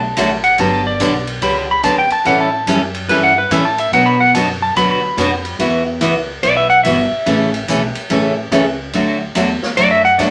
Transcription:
Already playing: B1 A5
0.17 A1 D3 F#3 A3 D4 F#4, hi-hat pedal, ride
0.44 F#5, ride
0.58 G1 D3 F#3 B3 D4 G4 A5, ride
0.87 D5
1.00 B1 D3 F#3 B3 D4 G4, hi-hat pedal, ride
1.27 ride
1.42 C#2 D3 F#3 B3 D4 G4 B5, ride
1.71 B5
1.83 D2 D3 F#3 B3 D4 G4 A5, hi-hat pedal, ride
1.98 G5
2.10 A5, muted upright bass stroke, ride
2.25 A2 E3 G3 C#4 E4 A4 F#5, ride
2.41 A5
2.66 F#2 E3 G3 C#4 E4 A4, hi-hat pedal, ride
2.94 ride
3.08 G2 E3 G3 C#4 E4 A4 B4, ride
3.23 F#5
3.38 B4
3.50 A2 E3 G3 C#4 E4 A4 E5, hi-hat pedal, ride
3.65 A5
3.78 E5, ride
3.92 B2 F#3 B3 D4 F#4 F#5, ride
4.06 B5
4.20 F#5
4.33 F#2 B2 F#3 B3 D4 F#4 A5, hi-hat pedal, ride
4.62 A5
4.76 D2 B2 F#3 B3 D4 F#4 B5, ride
4.91 B5
5.17 F2 B2 F#3 B3 D4 F#4, hi-hat pedal, ride
5.45 ride
5.59 E2 E3 B3 E4 F#4, ride
6.01 C#2 E3 B3 E4 F#4, hi-hat pedal, ride
6.43 B1 E3 B3 E4 F#4 D5, ride
6.57 E5
6.70 F#5
6.83 G1 E3 B3 E4 F#4 E5, hi-hat pedal, ride
7.12 muted upright bass stroke
7.26 A1 C#3 E3 A3 C#4 A4, ride
7.54 ride
7.68 B1 C#3 E3 A3 C#4 A4, hi-hat pedal, ride
7.95 ride
8.10 A1 C#3 E3 A3 C#4 A4, ride
8.51 C#2 C#3 E3 A3 C#4 A4, hi-hat pedal, ride
8.93 D2 D3 F#3 A3 D4 F#4, ride
9.35 E2 D3 F#3 A3 D4 F#4, hi-hat pedal, ride
9.62 muted upright bass stroke, snare
9.77 F#2 D3 F#3 A3 D4 F#4 D5, ride
9.91 E5
10.05 F#5
10.18 A2 D3 F#3 A3 D4 F#4 D5, snare, hi-hat pedal, ride

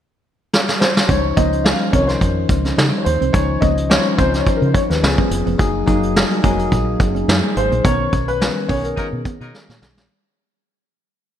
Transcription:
0.53 snare
0.69 snare
0.80 C5, snare
0.97 snare
1.08 C#2 F3 C#4 D#4 C5 C#5, kick, closed hi-hat
1.24 muted clean electric guitar stroke
1.36 C#2 F3 A#3 C#4 D#4 C5 D#5, kick, closed hi-hat
1.53 closed hi-hat
1.64 F5, snare
1.93 C2 D#3 C4 C#4 D#4 A#4 C#5, kick, closed hi-hat
1.99 F3
2.08 C5, snare, closed hi-hat
2.21 F2, muted clean electric guitar stroke, kick, closed hi-hat
2.49 C#2 C#4, kick, closed hi-hat
2.65 C#4, snare, closed hi-hat
2.78 C#3 D#4, snare
2.93 muted clean electric guitar stroke, closed hi-hat
2.98 C#5
3.05 D#2 C5, closed hi-hat
3.21 C2 C4, closed hi-hat
3.33 C#2 F3 C#4 D#4 C5 C#5, kick, closed hi-hat
3.49 muted clean electric guitar stroke
3.61 C#2 A#3 D#5, kick, closed hi-hat
3.77 closed hi-hat
3.89 F3 C#4 D#4 C5 C#5, snare
4.06 closed hi-hat
4.17 C#2 F3 C4 C#4 D#4 C5, kick, closed hi-hat
4.34 snare, closed hi-hat
4.38 C#5
4.47 C5, kick, closed hi-hat
4.57 A#4
4.62 C#3 C5, closed hi-hat
4.74 C#4 C#5, kick, closed hi-hat
4.90 D#2 B4, snare, closed hi-hat
5.02 C#2 F3 B3 C#4 G#4, snare
5.18 C#4, kick, closed hi-hat
5.31 F1, muted clean electric guitar stroke, closed hi-hat
5.46 F1 B3, closed hi-hat
5.58 F#1 F#3 A#3 D#4 F#4 G#4, kick, closed hi-hat
5.75 muted clean electric guitar stroke
5.86 F#1 F#3 A#3 D#4 G#4, kick, closed hi-hat
6.03 closed hi-hat
6.16 snare
6.32 closed hi-hat
6.43 F1 F#3 A#3 D#4 G#4, kick, closed hi-hat
6.59 closed hi-hat
6.72 A#1, muted clean electric guitar stroke, kick, closed hi-hat
7.00 F#1 C#4, kick, closed hi-hat
7.15 C#4, closed hi-hat
7.28 F#2 D#4, snare
7.44 muted clean electric guitar stroke
7.57 G#1 C5, closed hi-hat
7.71 A#1 A#3, closed hi-hat
7.84 B1 D#3 B3 C#4 A#4 C#5, kick, closed hi-hat
8.00 muted clean electric guitar stroke
8.12 B1 C#4, kick, closed hi-hat
8.28 B4, closed hi-hat
8.40 D#3 B3 C#4 G#4, snare
8.68 B1 D#3 B3 C#4 G#4 C#5, kick, open hi-hat
8.83 A#4, closed hi-hat
8.97 F#3 A#3 D#4 A#4, kick, closed hi-hat
9.13 B2
9.25 B3, kick, closed hi-hat
9.40 B2 F#3 A#3 D#4 A#4, closed hi-hat
9.54 snare
9.69 A#2 A#3, snare
9.82 B1, snare
9.97 A#1 A#3, snare

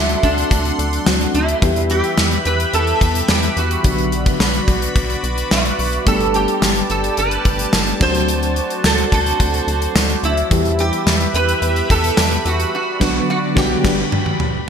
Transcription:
Already playing: D2 F#3 A3 C4 D4 E4 F#4 A4 D5 F#5 C6
0.09 closed hi-hat
0.23 D2 D4, kick, closed hi-hat
0.38 closed hi-hat
0.51 D2, kick, closed hi-hat
0.65 closed hi-hat
0.79 D2, closed hi-hat
0.93 closed hi-hat
1.06 D2 F#3 A3 C4 D4 F#4, snare, tambourine
1.21 closed hi-hat
1.34 D2 E4, closed hi-hat
1.48 closed hi-hat
1.61 E2 E3 G3 B3 E4 G4 B4 E5 B5, kick, closed hi-hat
1.76 closed hi-hat
1.90 G4, closed hi-hat
2.04 closed hi-hat
2.18 E2, snare, tambourine
2.31 closed hi-hat
2.45 E2 B4, closed hi-hat
2.60 closed hi-hat
2.73 E2 A4, closed hi-hat
2.87 closed hi-hat
3.01 E2, kick, closed hi-hat
3.15 closed hi-hat
3.28 E2 G4, snare, tambourine
3.43 closed hi-hat
3.57 E2 F#4, closed hi-hat
3.71 closed hi-hat
3.83 B1 D3 F#3 B3 D4 F#4 D5 B5, kick, closed hi-hat
3.98 closed hi-hat
4.12 closed hi-hat
4.26 kick, closed hi-hat
4.40 B1, snare, tambourine
4.54 closed hi-hat
4.68 B1, kick, closed hi-hat
4.82 closed hi-hat
4.96 B1, kick, closed hi-hat
5.10 closed hi-hat
5.23 B1, closed hi-hat
5.38 closed hi-hat
5.51 B1 F#4, snare, tambourine
5.65 closed hi-hat
5.79 B1, open hi-hat
5.93 closed hi-hat
6.05 G1 G3 A3 B3 D4 G4 A4 A5, kick, closed hi-hat
6.20 closed hi-hat
6.34 G4, closed hi-hat
6.48 closed hi-hat
6.62 G1, snare, tambourine
6.76 closed hi-hat
6.90 G1 A4, closed hi-hat
7.04 closed hi-hat
7.17 G1 B4, closed hi-hat
7.31 closed hi-hat
7.45 G1, kick, closed hi-hat
7.59 closed hi-hat
7.73 G1, snare, tambourine
7.81 A4
7.87 closed hi-hat
8.00 D2 F#3 A3 C4 D4 F#4 C5, kick, crash
8.15 closed hi-hat
8.28 closed hi-hat
8.43 closed hi-hat
8.56 closed hi-hat
8.70 closed hi-hat
8.84 D2 A4, snare, tambourine
8.98 closed hi-hat
9.12 D2 A4, kick, closed hi-hat
9.26 closed hi-hat
9.40 D2, kick, closed hi-hat
9.54 closed hi-hat
9.67 D2, closed hi-hat
9.82 closed hi-hat
9.95 D2, snare, tambourine
10.10 closed hi-hat
10.23 D2 E4, closed hi-hat
10.37 closed hi-hat
10.50 E2 E3 G3 B3 E4 G4 B4 E5 B5, kick, closed hi-hat
10.65 closed hi-hat
10.79 G4, closed hi-hat
10.93 closed hi-hat
11.06 E2, snare, tambourine
11.20 closed hi-hat
11.34 E2 B4, closed hi-hat
11.49 closed hi-hat
11.62 E2, closed hi-hat
11.76 closed hi-hat
11.90 E2 A4, kick, closed hi-hat
12.04 closed hi-hat
12.17 E2 G4, snare, tambourine
12.31 closed hi-hat
12.45 E2 F#4, closed hi-hat
12.60 closed hi-hat
12.73 F#4 D5
13.00 B1 D3 F#3 B3 D4 F#4, kick, snare, crash
13.30 F#4
13.55 B1 D3 F#3 B3 D4 F#4 G4, kick, snare
13.83 G1 D3 G3 B3 D4 G4 B5, kick, snare, crash
14.12 mid tom
14.26 mid tom
14.40 floor tom

